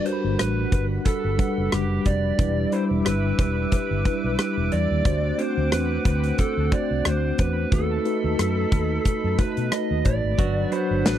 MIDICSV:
0, 0, Header, 1, 7, 480
1, 0, Start_track
1, 0, Key_signature, 1, "major"
1, 0, Tempo, 666667
1, 1719, Time_signature, 4, 2, 24, 8
1, 8052, End_track
2, 0, Start_track
2, 0, Title_t, "Analog synth pad"
2, 0, Program_c, 0, 89
2, 0, Note_on_c, 0, 55, 81
2, 0, Note_on_c, 0, 78, 69
2, 0, Note_on_c, 0, 83, 91
2, 1701, Note_off_c, 0, 78, 0
2, 1702, Note_off_c, 0, 83, 0
2, 1720, Note_on_c, 0, 76, 70
2, 1720, Note_on_c, 0, 86, 86
2, 3612, Note_off_c, 0, 55, 0
2, 3620, Note_off_c, 0, 76, 0
2, 3639, Note_on_c, 0, 78, 69
2, 3640, Note_on_c, 0, 60, 85
2, 5531, Note_off_c, 0, 86, 0
2, 5540, Note_off_c, 0, 60, 0
2, 5540, Note_off_c, 0, 78, 0
2, 5559, Note_on_c, 0, 69, 78
2, 5560, Note_on_c, 0, 63, 75
2, 5560, Note_on_c, 0, 83, 88
2, 7460, Note_off_c, 0, 63, 0
2, 7460, Note_off_c, 0, 69, 0
2, 7460, Note_off_c, 0, 83, 0
2, 7479, Note_on_c, 0, 62, 75
2, 7479, Note_on_c, 0, 83, 90
2, 7480, Note_on_c, 0, 78, 69
2, 8052, Note_off_c, 0, 62, 0
2, 8052, Note_off_c, 0, 78, 0
2, 8052, Note_off_c, 0, 83, 0
2, 8052, End_track
3, 0, Start_track
3, 0, Title_t, "Lead electric guitar"
3, 0, Program_c, 1, 29
3, 46, Note_on_c, 1, 72, 77
3, 281, Note_off_c, 1, 72, 0
3, 284, Note_on_c, 1, 71, 77
3, 505, Note_off_c, 1, 71, 0
3, 526, Note_on_c, 1, 71, 73
3, 590, Note_off_c, 1, 71, 0
3, 766, Note_on_c, 1, 69, 78
3, 1244, Note_off_c, 1, 69, 0
3, 1247, Note_on_c, 1, 67, 78
3, 1485, Note_on_c, 1, 74, 88
3, 1490, Note_off_c, 1, 67, 0
3, 1965, Note_on_c, 1, 72, 81
3, 1976, Note_off_c, 1, 74, 0
3, 2029, Note_off_c, 1, 72, 0
3, 2207, Note_on_c, 1, 71, 81
3, 2434, Note_off_c, 1, 71, 0
3, 2442, Note_on_c, 1, 71, 81
3, 2675, Note_off_c, 1, 71, 0
3, 2683, Note_on_c, 1, 71, 85
3, 3155, Note_off_c, 1, 71, 0
3, 3164, Note_on_c, 1, 71, 80
3, 3399, Note_on_c, 1, 74, 91
3, 3408, Note_off_c, 1, 71, 0
3, 3881, Note_on_c, 1, 72, 79
3, 3893, Note_off_c, 1, 74, 0
3, 4117, Note_off_c, 1, 72, 0
3, 4120, Note_on_c, 1, 71, 83
3, 4343, Note_off_c, 1, 71, 0
3, 4364, Note_on_c, 1, 71, 82
3, 4602, Note_off_c, 1, 71, 0
3, 4605, Note_on_c, 1, 69, 78
3, 4847, Note_on_c, 1, 74, 85
3, 4849, Note_off_c, 1, 69, 0
3, 5084, Note_on_c, 1, 72, 86
3, 5090, Note_off_c, 1, 74, 0
3, 5324, Note_off_c, 1, 72, 0
3, 5326, Note_on_c, 1, 71, 86
3, 5564, Note_off_c, 1, 71, 0
3, 5567, Note_on_c, 1, 69, 92
3, 6516, Note_off_c, 1, 69, 0
3, 6524, Note_on_c, 1, 69, 79
3, 6745, Note_off_c, 1, 69, 0
3, 6765, Note_on_c, 1, 71, 78
3, 6985, Note_off_c, 1, 71, 0
3, 7004, Note_on_c, 1, 75, 84
3, 7225, Note_off_c, 1, 75, 0
3, 7246, Note_on_c, 1, 74, 93
3, 7694, Note_off_c, 1, 74, 0
3, 7726, Note_on_c, 1, 72, 85
3, 7962, Note_off_c, 1, 72, 0
3, 7965, Note_on_c, 1, 71, 90
3, 8052, Note_off_c, 1, 71, 0
3, 8052, End_track
4, 0, Start_track
4, 0, Title_t, "Tine electric piano"
4, 0, Program_c, 2, 4
4, 0, Control_c, 2, 64, 127
4, 0, Note_on_c, 2, 55, 66
4, 0, Note_on_c, 2, 62, 64
4, 0, Note_on_c, 2, 66, 59
4, 0, Note_on_c, 2, 71, 76
4, 35, Note_off_c, 2, 55, 0
4, 35, Note_on_c, 2, 55, 61
4, 37, Note_off_c, 2, 62, 0
4, 37, Note_on_c, 2, 62, 60
4, 40, Note_off_c, 2, 66, 0
4, 40, Note_on_c, 2, 66, 57
4, 43, Note_on_c, 2, 70, 52
4, 90, Note_on_c, 2, 83, 64
4, 93, Note_off_c, 2, 70, 0
4, 951, Note_off_c, 2, 55, 0
4, 952, Note_off_c, 2, 62, 0
4, 954, Note_off_c, 2, 66, 0
4, 979, Note_off_c, 2, 83, 0
4, 994, Note_on_c, 2, 55, 65
4, 996, Note_on_c, 2, 62, 60
4, 1000, Note_on_c, 2, 78, 60
4, 1003, Note_off_c, 2, 71, 0
4, 1003, Note_on_c, 2, 71, 74
4, 1682, Note_off_c, 2, 55, 0
4, 1683, Note_off_c, 2, 62, 0
4, 1685, Note_off_c, 2, 78, 0
4, 1687, Note_off_c, 2, 71, 0
4, 1715, Note_on_c, 2, 55, 65
4, 1718, Note_on_c, 2, 62, 61
4, 1721, Note_on_c, 2, 64, 59
4, 1723, Note_on_c, 2, 71, 74
4, 1728, Control_c, 2, 64, 0
4, 1834, Control_c, 2, 64, 127
4, 1946, Note_off_c, 2, 55, 0
4, 1947, Note_off_c, 2, 62, 0
4, 1949, Note_off_c, 2, 64, 0
4, 1950, Note_off_c, 2, 71, 0
4, 1954, Note_on_c, 2, 55, 60
4, 1957, Note_on_c, 2, 62, 56
4, 1961, Note_on_c, 2, 64, 57
4, 1963, Note_on_c, 2, 83, 70
4, 2871, Note_off_c, 2, 55, 0
4, 2872, Note_off_c, 2, 62, 0
4, 2874, Note_off_c, 2, 64, 0
4, 2875, Note_off_c, 2, 83, 0
4, 2916, Note_on_c, 2, 55, 63
4, 2918, Note_on_c, 2, 62, 58
4, 2922, Note_on_c, 2, 64, 58
4, 2924, Note_on_c, 2, 71, 72
4, 3603, Note_off_c, 2, 55, 0
4, 3604, Note_off_c, 2, 62, 0
4, 3606, Note_off_c, 2, 64, 0
4, 3607, Note_off_c, 2, 71, 0
4, 3636, Note_on_c, 2, 57, 66
4, 3639, Note_on_c, 2, 62, 61
4, 3641, Note_on_c, 2, 66, 59
4, 3644, Note_on_c, 2, 72, 76
4, 3648, Control_c, 2, 64, 0
4, 3772, Control_c, 2, 64, 127
4, 3866, Note_off_c, 2, 57, 0
4, 3867, Note_off_c, 2, 62, 0
4, 3869, Note_off_c, 2, 66, 0
4, 3870, Note_off_c, 2, 72, 0
4, 3876, Note_on_c, 2, 57, 60
4, 3877, Note_on_c, 2, 62, 59
4, 3881, Note_on_c, 2, 66, 58
4, 3883, Note_on_c, 2, 60, 70
4, 4792, Note_off_c, 2, 57, 0
4, 4793, Note_off_c, 2, 62, 0
4, 4794, Note_off_c, 2, 66, 0
4, 4795, Note_off_c, 2, 60, 0
4, 4835, Note_on_c, 2, 57, 67
4, 4837, Note_on_c, 2, 62, 59
4, 4841, Note_on_c, 2, 66, 60
4, 4844, Note_on_c, 2, 72, 70
4, 5523, Note_off_c, 2, 57, 0
4, 5524, Note_off_c, 2, 62, 0
4, 5525, Note_off_c, 2, 66, 0
4, 5527, Note_off_c, 2, 72, 0
4, 5556, Note_on_c, 2, 57, 67
4, 5558, Note_on_c, 2, 63, 59
4, 5561, Note_on_c, 2, 66, 60
4, 5564, Note_on_c, 2, 71, 75
4, 5568, Control_c, 2, 64, 0
4, 5681, Control_c, 2, 64, 127
4, 5786, Note_off_c, 2, 57, 0
4, 5787, Note_off_c, 2, 63, 0
4, 5789, Note_off_c, 2, 66, 0
4, 5790, Note_off_c, 2, 71, 0
4, 5796, Note_on_c, 2, 57, 62
4, 5798, Note_on_c, 2, 63, 59
4, 5801, Note_on_c, 2, 66, 57
4, 5804, Note_on_c, 2, 71, 73
4, 6712, Note_off_c, 2, 57, 0
4, 6713, Note_off_c, 2, 63, 0
4, 6714, Note_off_c, 2, 66, 0
4, 6716, Note_off_c, 2, 71, 0
4, 6755, Note_on_c, 2, 57, 64
4, 6757, Note_on_c, 2, 63, 62
4, 6761, Note_on_c, 2, 66, 56
4, 6763, Note_on_c, 2, 71, 69
4, 7443, Note_off_c, 2, 57, 0
4, 7444, Note_off_c, 2, 63, 0
4, 7446, Note_off_c, 2, 66, 0
4, 7447, Note_off_c, 2, 71, 0
4, 7474, Note_on_c, 2, 54, 64
4, 7477, Note_on_c, 2, 62, 60
4, 7480, Note_on_c, 2, 66, 58
4, 7483, Note_on_c, 2, 71, 71
4, 7487, Control_c, 2, 64, 0
4, 7604, Control_c, 2, 64, 127
4, 7705, Note_off_c, 2, 54, 0
4, 7706, Note_off_c, 2, 62, 0
4, 7708, Note_off_c, 2, 66, 0
4, 7709, Note_off_c, 2, 71, 0
4, 7714, Note_on_c, 2, 54, 65
4, 7717, Note_on_c, 2, 62, 57
4, 7719, Note_on_c, 2, 66, 56
4, 7723, Note_on_c, 2, 83, 69
4, 8052, Note_off_c, 2, 54, 0
4, 8052, Note_off_c, 2, 62, 0
4, 8052, Note_off_c, 2, 66, 0
4, 8052, Note_off_c, 2, 83, 0
4, 8052, End_track
5, 0, Start_track
5, 0, Title_t, "Clean electric guitar"
5, 0, Program_c, 3, 27
5, 7478, Note_on_c, 3, 54, 74
5, 7483, Note_on_c, 3, 66, 62
5, 7718, Note_on_c, 3, 59, 61
5, 7958, Note_on_c, 3, 62, 59
5, 8052, Note_off_c, 3, 54, 0
5, 8052, Note_off_c, 3, 59, 0
5, 8052, Note_off_c, 3, 62, 0
5, 8052, Note_off_c, 3, 66, 0
5, 8052, End_track
6, 0, Start_track
6, 0, Title_t, "Fretless electric bass"
6, 0, Program_c, 4, 35
6, 174, Note_on_c, 4, 31, 87
6, 254, Note_off_c, 4, 31, 0
6, 282, Note_on_c, 4, 33, 71
6, 461, Note_off_c, 4, 33, 0
6, 520, Note_on_c, 4, 31, 77
6, 699, Note_off_c, 4, 31, 0
6, 894, Note_on_c, 4, 31, 78
6, 974, Note_off_c, 4, 31, 0
6, 1133, Note_on_c, 4, 30, 75
6, 1213, Note_off_c, 4, 30, 0
6, 1240, Note_on_c, 4, 30, 75
6, 1420, Note_off_c, 4, 30, 0
6, 1482, Note_on_c, 4, 29, 79
6, 1661, Note_off_c, 4, 29, 0
6, 1719, Note_on_c, 4, 28, 100
6, 1899, Note_off_c, 4, 28, 0
6, 2092, Note_on_c, 4, 28, 90
6, 2173, Note_off_c, 4, 28, 0
6, 2200, Note_on_c, 4, 31, 78
6, 2380, Note_off_c, 4, 31, 0
6, 2440, Note_on_c, 4, 28, 81
6, 2620, Note_off_c, 4, 28, 0
6, 2811, Note_on_c, 4, 31, 84
6, 2892, Note_off_c, 4, 31, 0
6, 3052, Note_on_c, 4, 35, 73
6, 3133, Note_off_c, 4, 35, 0
6, 3290, Note_on_c, 4, 28, 79
6, 3371, Note_off_c, 4, 28, 0
6, 3399, Note_on_c, 4, 40, 82
6, 3498, Note_off_c, 4, 40, 0
6, 3531, Note_on_c, 4, 39, 79
6, 3612, Note_off_c, 4, 39, 0
6, 3638, Note_on_c, 4, 38, 101
6, 3818, Note_off_c, 4, 38, 0
6, 4010, Note_on_c, 4, 38, 95
6, 4092, Note_off_c, 4, 38, 0
6, 4119, Note_on_c, 4, 40, 89
6, 4299, Note_off_c, 4, 40, 0
6, 4359, Note_on_c, 4, 38, 81
6, 4539, Note_off_c, 4, 38, 0
6, 4730, Note_on_c, 4, 38, 86
6, 4812, Note_off_c, 4, 38, 0
6, 4971, Note_on_c, 4, 36, 82
6, 5052, Note_off_c, 4, 36, 0
6, 5080, Note_on_c, 4, 38, 80
6, 5259, Note_off_c, 4, 38, 0
6, 5321, Note_on_c, 4, 40, 82
6, 5500, Note_off_c, 4, 40, 0
6, 5558, Note_on_c, 4, 39, 94
6, 5739, Note_off_c, 4, 39, 0
6, 5932, Note_on_c, 4, 39, 99
6, 6012, Note_off_c, 4, 39, 0
6, 6039, Note_on_c, 4, 42, 82
6, 6219, Note_off_c, 4, 42, 0
6, 6279, Note_on_c, 4, 39, 89
6, 6459, Note_off_c, 4, 39, 0
6, 6651, Note_on_c, 4, 42, 80
6, 6732, Note_off_c, 4, 42, 0
6, 6891, Note_on_c, 4, 47, 82
6, 6972, Note_off_c, 4, 47, 0
6, 7131, Note_on_c, 4, 39, 83
6, 7212, Note_off_c, 4, 39, 0
6, 7240, Note_on_c, 4, 33, 86
6, 7339, Note_off_c, 4, 33, 0
6, 7372, Note_on_c, 4, 32, 77
6, 7452, Note_off_c, 4, 32, 0
6, 7478, Note_on_c, 4, 31, 94
6, 7658, Note_off_c, 4, 31, 0
6, 7851, Note_on_c, 4, 31, 91
6, 7932, Note_off_c, 4, 31, 0
6, 7959, Note_on_c, 4, 33, 72
6, 8052, Note_off_c, 4, 33, 0
6, 8052, End_track
7, 0, Start_track
7, 0, Title_t, "Drums"
7, 41, Note_on_c, 9, 42, 59
7, 113, Note_off_c, 9, 42, 0
7, 282, Note_on_c, 9, 42, 77
7, 283, Note_on_c, 9, 37, 90
7, 354, Note_off_c, 9, 42, 0
7, 355, Note_off_c, 9, 37, 0
7, 519, Note_on_c, 9, 42, 68
7, 520, Note_on_c, 9, 36, 86
7, 591, Note_off_c, 9, 42, 0
7, 592, Note_off_c, 9, 36, 0
7, 759, Note_on_c, 9, 42, 80
7, 761, Note_on_c, 9, 36, 79
7, 831, Note_off_c, 9, 42, 0
7, 833, Note_off_c, 9, 36, 0
7, 999, Note_on_c, 9, 42, 75
7, 1001, Note_on_c, 9, 36, 96
7, 1071, Note_off_c, 9, 42, 0
7, 1073, Note_off_c, 9, 36, 0
7, 1241, Note_on_c, 9, 37, 105
7, 1241, Note_on_c, 9, 42, 75
7, 1313, Note_off_c, 9, 37, 0
7, 1313, Note_off_c, 9, 42, 0
7, 1479, Note_on_c, 9, 42, 59
7, 1482, Note_on_c, 9, 36, 74
7, 1551, Note_off_c, 9, 42, 0
7, 1554, Note_off_c, 9, 36, 0
7, 1720, Note_on_c, 9, 36, 106
7, 1721, Note_on_c, 9, 42, 68
7, 1792, Note_off_c, 9, 36, 0
7, 1793, Note_off_c, 9, 42, 0
7, 1960, Note_on_c, 9, 42, 61
7, 2032, Note_off_c, 9, 42, 0
7, 2201, Note_on_c, 9, 42, 82
7, 2202, Note_on_c, 9, 37, 93
7, 2273, Note_off_c, 9, 42, 0
7, 2274, Note_off_c, 9, 37, 0
7, 2438, Note_on_c, 9, 42, 65
7, 2439, Note_on_c, 9, 36, 91
7, 2510, Note_off_c, 9, 42, 0
7, 2511, Note_off_c, 9, 36, 0
7, 2677, Note_on_c, 9, 42, 79
7, 2680, Note_on_c, 9, 36, 80
7, 2749, Note_off_c, 9, 42, 0
7, 2752, Note_off_c, 9, 36, 0
7, 2918, Note_on_c, 9, 42, 70
7, 2919, Note_on_c, 9, 36, 93
7, 2990, Note_off_c, 9, 42, 0
7, 2991, Note_off_c, 9, 36, 0
7, 3159, Note_on_c, 9, 37, 110
7, 3159, Note_on_c, 9, 42, 77
7, 3231, Note_off_c, 9, 37, 0
7, 3231, Note_off_c, 9, 42, 0
7, 3397, Note_on_c, 9, 42, 57
7, 3469, Note_off_c, 9, 42, 0
7, 3638, Note_on_c, 9, 36, 98
7, 3638, Note_on_c, 9, 42, 68
7, 3710, Note_off_c, 9, 36, 0
7, 3710, Note_off_c, 9, 42, 0
7, 3879, Note_on_c, 9, 42, 63
7, 3951, Note_off_c, 9, 42, 0
7, 4118, Note_on_c, 9, 42, 79
7, 4120, Note_on_c, 9, 37, 96
7, 4190, Note_off_c, 9, 42, 0
7, 4192, Note_off_c, 9, 37, 0
7, 4357, Note_on_c, 9, 42, 66
7, 4359, Note_on_c, 9, 36, 86
7, 4429, Note_off_c, 9, 42, 0
7, 4431, Note_off_c, 9, 36, 0
7, 4490, Note_on_c, 9, 42, 57
7, 4562, Note_off_c, 9, 42, 0
7, 4596, Note_on_c, 9, 42, 75
7, 4599, Note_on_c, 9, 36, 76
7, 4668, Note_off_c, 9, 42, 0
7, 4671, Note_off_c, 9, 36, 0
7, 4837, Note_on_c, 9, 42, 72
7, 4839, Note_on_c, 9, 36, 94
7, 4909, Note_off_c, 9, 42, 0
7, 4911, Note_off_c, 9, 36, 0
7, 5077, Note_on_c, 9, 42, 73
7, 5078, Note_on_c, 9, 37, 111
7, 5149, Note_off_c, 9, 42, 0
7, 5150, Note_off_c, 9, 37, 0
7, 5316, Note_on_c, 9, 42, 62
7, 5320, Note_on_c, 9, 36, 76
7, 5388, Note_off_c, 9, 42, 0
7, 5392, Note_off_c, 9, 36, 0
7, 5558, Note_on_c, 9, 42, 68
7, 5559, Note_on_c, 9, 36, 97
7, 5630, Note_off_c, 9, 42, 0
7, 5631, Note_off_c, 9, 36, 0
7, 5799, Note_on_c, 9, 42, 63
7, 5871, Note_off_c, 9, 42, 0
7, 6041, Note_on_c, 9, 42, 83
7, 6043, Note_on_c, 9, 37, 91
7, 6113, Note_off_c, 9, 42, 0
7, 6115, Note_off_c, 9, 37, 0
7, 6278, Note_on_c, 9, 42, 68
7, 6279, Note_on_c, 9, 36, 87
7, 6350, Note_off_c, 9, 42, 0
7, 6351, Note_off_c, 9, 36, 0
7, 6517, Note_on_c, 9, 42, 80
7, 6520, Note_on_c, 9, 36, 81
7, 6589, Note_off_c, 9, 42, 0
7, 6592, Note_off_c, 9, 36, 0
7, 6757, Note_on_c, 9, 42, 72
7, 6759, Note_on_c, 9, 36, 89
7, 6829, Note_off_c, 9, 42, 0
7, 6831, Note_off_c, 9, 36, 0
7, 6890, Note_on_c, 9, 42, 48
7, 6962, Note_off_c, 9, 42, 0
7, 6997, Note_on_c, 9, 42, 75
7, 6998, Note_on_c, 9, 37, 115
7, 7069, Note_off_c, 9, 42, 0
7, 7070, Note_off_c, 9, 37, 0
7, 7235, Note_on_c, 9, 42, 60
7, 7240, Note_on_c, 9, 36, 78
7, 7307, Note_off_c, 9, 42, 0
7, 7312, Note_off_c, 9, 36, 0
7, 7477, Note_on_c, 9, 42, 69
7, 7478, Note_on_c, 9, 36, 97
7, 7549, Note_off_c, 9, 42, 0
7, 7550, Note_off_c, 9, 36, 0
7, 7718, Note_on_c, 9, 42, 63
7, 7790, Note_off_c, 9, 42, 0
7, 7960, Note_on_c, 9, 42, 80
7, 7961, Note_on_c, 9, 38, 96
7, 8032, Note_off_c, 9, 42, 0
7, 8033, Note_off_c, 9, 38, 0
7, 8052, End_track
0, 0, End_of_file